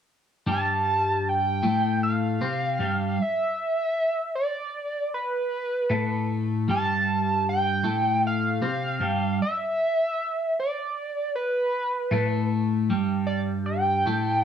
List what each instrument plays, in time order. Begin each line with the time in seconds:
0.46 clean electric guitar G2 G3
0.51 analog synth lead A5
1.29 analog synth lead G5
1.63 clean electric guitar A2 A3
2.03 analog synth lead F5
2.41 clean electric guitar C3 C4
2.79 clean electric guitar G2 G3
3.22 analog synth lead E5
4.35 analog synth lead D5
5.14 analog synth lead B4
5.90 clean electric guitar A2 A3
6.68 clean electric guitar G2 G3, analog synth lead A5
7.49 analog synth lead G5
7.83 clean electric guitar A2 A3
8.27 analog synth lead F5
8.62 clean electric guitar C3 C4
9.00 clean electric guitar G2 G3
9.42 analog synth lead E5
10.60 analog synth lead D5
11.35 analog synth lead B4
12.11 clean electric guitar A2 A3
12.90 clean electric guitar G2 G3
13.27 analog synth lead D5
13.66 analog synth lead G5
14.06 clean electric guitar A2 A3